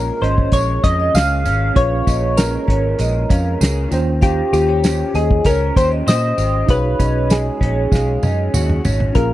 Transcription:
0.00 1.74 A#2 medium
0.00 0.33 F3 medium
0.00 0.52 G#3 medium
0.00 0.22 C#4 medium
0.00 1.71 C#4 medium
0.00 1.72 F4 medium
0.00 1.14 G#4 medium
0.00 1.73 G#4 medium
0.00 0.24 A#4 medium
0.00 1.73 A#4 medium
0.21 0.47 G#1 medium
0.21 0.83 C#4 medium
0.21 0.51 C5 medium
0.21 0.51 D#5 medium
0.21 snare soft
0.21 closed hi-hat medium
0.38 kick medium
0.52 0.77 A#1 medium
0.52 2.36 G#3 medium
0.52 0.67 C#5 medium
0.52 0.85 C#5 medium
0.52 kick loud
0.52 closed hi-hat medium
0.52 tambourine soft
0.84 1.08 F2 medium
0.84 1.45 C#4 medium
0.84 1.15 D#5 loud
0.84 kick loud
0.84 closed hi-hat loud
0.84 tambourine soft
1.00 1.14 D#5 medium
1.14 1.46 C#2 loud
1.14 3.60 G#4 medium
1.14 1.72 F5 loud
1.14 snare loud
1.14 closed hi-hat medium
1.14 tambourine medium
1.45 1.70 G#1 loud
1.45 2.06 C#4 medium
1.45 closed hi-hat medium
1.45 tambourine soft
1.74 2.01 A#1 loud
1.74 3.97 A#2 medium
1.74 3.87 C#4 medium
1.74 3.87 F4 medium
1.74 3.88 G#4 medium
1.74 2.40 C#5 medium
1.74 2.07 F5 medium
1.74 kick loud
1.74 closed hi-hat medium
1.79 1.84 B4 medium
1.86 3.92 C#5 medium
2.07 2.56 A#1 medium
2.07 2.67 C#4 medium
2.07 2.51 D#5 medium
2.07 kick medium
2.07 closed hi-hat medium
2.07 tambourine medium
2.37 2.98 G#3 medium
2.37 3.87 A#4 medium
2.37 snare loud
2.37 closed hi-hat medium
2.37 tambourine medium
2.68 2.93 G#1 medium
2.68 3.29 C#4 medium
2.68 2.83 C#5 medium
2.68 kick medium
2.68 closed hi-hat medium
2.99 3.24 A#1 loud
2.99 3.98 G#3 medium
2.99 3.29 D#5 medium
2.99 closed hi-hat medium
2.99 tambourine soft
3.29 3.55 F2 medium
3.29 4.25 C#4 medium
3.29 3.45 F5 medium
3.29 kick loud
3.29 closed hi-hat loud
3.29 tambourine soft
3.61 3.85 C#2 medium
3.61 3.98 G#4 medium
3.61 snare loud
3.61 closed hi-hat medium
3.61 tambourine medium
3.89 4.41 D#2 loud
3.89 4.22 D#3 medium
3.89 6.33 C#4 medium
3.89 6.33 F4 medium
3.89 6.34 G5 medium
3.89 closed hi-hat medium
3.89 tambourine soft
3.94 6.35 C5 medium
4.21 7.02 D#3 medium
4.21 4.52 G4 medium
4.21 4.51 F5 loud
4.21 kick loud
4.21 closed hi-hat medium
4.21 tambourine soft
4.53 5.02 D#2 loud
4.53 4.69 F4 medium
4.53 5.17 G4 medium
4.53 closed hi-hat medium
4.53 tambourine medium
4.68 5.15 G4 medium
4.68 4.83 C#5 medium
4.84 5.45 C#4 medium
4.84 snare loud
4.84 closed hi-hat medium
4.84 tambourine medium
5.14 5.39 D#2 medium
5.14 5.47 G#4 medium
5.14 5.44 D#5 medium
5.14 closed hi-hat medium
5.14 tambourine soft
5.31 kick loud
5.45 5.70 C#2 medium
5.45 6.99 C#4 medium
5.45 5.74 A#4 loud
5.45 5.60 C#5 medium
5.45 kick loud
5.45 closed hi-hat loud
5.45 tambourine soft
5.76 6.01 D#2 medium
5.76 6.36 G4 medium
5.76 5.91 C5 medium
5.76 kick loud
5.76 closed hi-hat medium
5.76 tambourine soft
5.92 6.06 D#5 medium
6.07 6.32 A#2 medium
6.07 6.75 C5 medium
6.07 6.71 D#5 loud
6.07 snare loud
6.07 closed hi-hat medium
6.07 tambourine medium
6.38 6.62 G#1 medium
6.38 6.75 G4 medium
6.38 closed hi-hat medium
6.38 tambourine soft
6.66 6.93 B1 loud
6.66 9.10 D#4 medium
6.66 9.11 F#4 medium
6.66 9.12 G#4 medium
6.66 6.98 F5 loud
6.66 kick loud
6.66 closed hi-hat medium
6.66 tambourine soft
6.70 7.33 B4 loud
6.70 9.13 C#5 medium
6.99 7.49 B1 loud
6.99 7.60 C#4 medium
6.99 7.43 D#5 medium
6.99 kick medium
6.99 closed hi-hat medium
6.99 tambourine medium
7.30 7.91 G#3 medium
7.30 8.81 G#4 medium
7.30 snare loud
7.30 closed hi-hat medium
7.30 tambourine medium
7.61 7.86 A#1 medium
7.61 8.22 C#4 medium
7.61 7.76 C#5 medium
7.61 kick medium
7.61 closed hi-hat medium
7.92 8.17 B1 medium
7.92 9.34 G#3 medium
7.92 8.23 F5 medium
7.92 kick medium
7.92 snare medium
7.92 tambourine soft
8.23 8.48 F#2 medium
8.23 8.85 C#4 medium
8.23 8.37 D#5 medium
8.23 high tom medium
8.23 tambourine soft
8.54 8.78 D#2 medium
8.54 9.22 F#4 medium
8.54 mid tom medium
8.54 tambourine medium
8.70 mid tom medium
8.85 9.10 G#1 medium
8.85 9.34 C#4 medium
8.85 floor tom loud
8.85 tambourine soft
9.00 floor tom medium
9.13 9.34 A#1 loud
9.13 9.34 A#2 medium
9.13 9.34 C#4 medium
9.13 9.34 F4 medium
9.13 9.34 G#4 medium
9.13 9.29 A#4 medium
9.13 9.34 F5 medium
9.13 kick loud
9.13 closed hi-hat medium
9.13 tambourine soft
9.18 9.34 A#4 medium

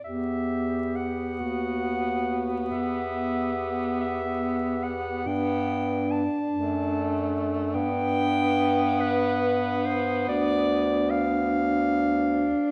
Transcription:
0.04 1.37 E2 soft
0.04 5.22 B3 medium
0.04 1.41 G4 soft
0.04 0.98 E5 medium
0.96 2.54 F#5 medium
1.40 2.68 D#2 soft
1.40 2.70 F#4 soft
2.70 5.22 E2 soft
2.70 5.28 G4 soft
2.70 3.97 E5 medium
4.00 4.85 E5 medium
4.83 5.29 F#5 medium
5.26 6.24 G2 medium
5.26 6.24 B3 medium
5.26 10.01 D4 medium
5.26 6.13 G5 medium
6.11 7.49 A5 medium
6.52 7.71 F#2 medium
6.52 7.77 A3 medium
7.74 10.24 G2 medium
7.74 12.52 B3 medium
7.74 9.02 G5 loud
9.00 9.87 B4 medium
9.86 10.28 C5 medium
10.27 12.47 D2 medium
10.27 12.71 D4 medium
10.27 11.12 D5 loud
11.10 12.71 F5 loud

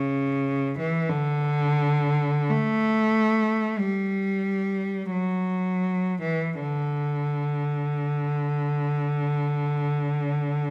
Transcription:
0.00 0.74 C#3 medium
0.79 1.08 E3 medium
1.09 2.49 D3 medium
2.50 3.76 A3 medium
3.79 5.10 G3 medium
5.11 6.18 F#3 medium
6.22 6.59 E3 soft
6.61 10.70 D3 soft

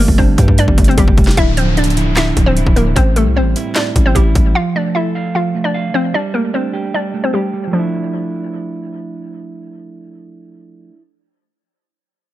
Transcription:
0.00 0.57 G3 loud
0.00 0.77 A3 medium
0.00 0.16 A#3 medium
0.00 0.15 A#4 medium
0.08 0.37 G1 loud
0.08 kick medium
0.18 0.56 C4 medium
0.18 1.17 D4 medium
0.18 0.55 C5 medium
0.18 kick medium
0.38 0.67 G2 loud
0.38 0.96 G4 loud
0.38 kick medium
0.38 closed hi-hat medium
0.48 kick medium
0.58 1.16 G3 medium
0.58 0.87 D4 medium
0.58 0.86 D5 loud
0.58 closed hi-hat medium
0.68 0.96 G1 loud
0.68 kick medium
0.78 1.37 A3 medium
0.78 kick loud
0.78 closed hi-hat medium
0.84 0.96 C5 medium
0.84 closed hi-hat medium
0.89 0.97 C4 medium
0.89 closed hi-hat soft
0.97 1.19 G1 loud
0.97 1.36 G3 medium
0.97 1.37 G4 medium
0.97 1.35 G4 medium
0.97 kick loud
0.97 closed hi-hat medium
1.08 kick medium
1.18 1.36 F1 loud
1.18 1.37 G3 medium
1.18 kick loud
1.18 closed hi-hat soft
1.24 snare loud
1.24 closed hi-hat medium
1.31 closed hi-hat medium
1.37 2.33 D1 loud
1.37 2.15 D3 medium
1.37 1.55 E4 medium
1.37 1.55 E5 loud
1.37 kick loud
1.37 closed hi-hat medium
1.37 downlifter medium
1.57 2.36 F3 medium
1.57 1.75 C4 medium
1.57 1.74 C5 medium
1.57 closed hi-hat medium
1.77 2.77 D4 medium
1.77 2.15 D4 medium
1.77 2.15 D5 medium
1.77 closed hi-hat medium
1.84 closed hi-hat medium
1.90 closed hi-hat medium
1.97 2.56 E4 medium
1.97 closed hi-hat medium
2.16 2.75 D3 medium
2.16 2.46 E4 medium
2.16 2.45 E5 medium
2.16 snare loud
2.16 clap medium
2.16 closed hi-hat medium
2.37 2.65 D1 loud
2.37 2.96 F3 medium
2.37 kick medium
2.37 closed hi-hat medium
2.46 2.75 C4 medium
2.46 2.75 C5 medium
2.57 2.97 E4 medium
2.57 closed hi-hat medium
2.66 2.95 D1 loud
2.66 kick loud
2.76 2.96 D3 medium
2.76 2.94 A#3 medium
2.76 2.93 A#4 medium
2.76 closed hi-hat medium
2.96 3.28 A1 loud
2.96 3.75 A2 medium
2.96 3.14 C4 medium
2.96 3.13 C5 loud
2.96 kick loud
2.96 closed hi-hat medium
3.16 3.95 G3 medium
3.16 3.34 A3 medium
3.16 3.33 A4 medium
3.16 closed hi-hat medium
3.26 3.43 C2 loud
3.36 4.35 C4 medium
3.36 3.74 C4 medium
3.36 3.74 C5 medium
3.41 3.55 A1 loud
3.56 4.15 E4 medium
3.56 closed hi-hat medium
3.75 4.34 A2 medium
3.75 4.04 D4 medium
3.75 4.04 D5 medium
3.75 snare loud
3.75 clap medium
3.75 closed hi-hat medium
3.96 4.15 A1 loud
3.96 4.56 G3 medium
3.96 kick medium
3.96 closed hi-hat medium
4.06 4.15 C4 medium
4.06 4.14 C5 medium
4.15 4.35 A1 loud
4.15 4.53 G3 medium
4.15 4.55 E4 loud
4.15 4.53 G4 medium
4.15 kick loud
4.15 closed hi-hat medium
4.35 4.54 A1 loud
4.35 4.55 A2 medium
4.35 kick medium
4.35 closed hi-hat medium
4.55 5.34 F3 medium
4.55 4.73 F4 medium
4.55 4.72 F5 loud
4.75 5.54 A3 medium
4.75 4.93 D4 medium
4.75 4.93 D5 medium
4.95 5.33 E4 medium
4.95 5.95 A4 medium
4.95 5.32 E5 medium
5.15 5.73 F5 medium
5.35 5.93 F3 medium
5.35 5.63 F4 medium
5.35 5.63 F5 medium
5.55 6.14 A3 medium
5.64 5.93 D4 medium
5.64 5.92 D5 medium
5.74 6.14 F5 medium
5.94 6.14 F3 medium
5.94 6.12 C4 medium
5.94 6.11 C5 medium
6.14 6.93 G3 medium
6.14 6.32 D4 medium
6.14 6.31 D5 loud
6.34 7.13 A3 medium
6.34 6.52 A#3 medium
6.34 6.51 A#4 medium
6.54 6.92 C4 medium
6.54 7.53 D4 medium
6.54 6.91 C5 medium
6.73 7.32 G4 medium
6.94 7.52 G3 medium
6.94 7.23 D4 medium
6.94 7.22 D5 medium
7.14 7.67 A3 medium
7.24 7.33 C4 medium
7.24 7.32 C5 medium
7.33 7.71 G3 medium
7.33 7.73 G4 medium
7.33 7.71 G4 medium
7.53 7.71 G3 medium
7.67 10.89 F3 medium
7.71 8.88 F3 medium
7.71 10.93 A3 medium
7.75 10.97 D4 medium
7.75 11.01 E4 medium

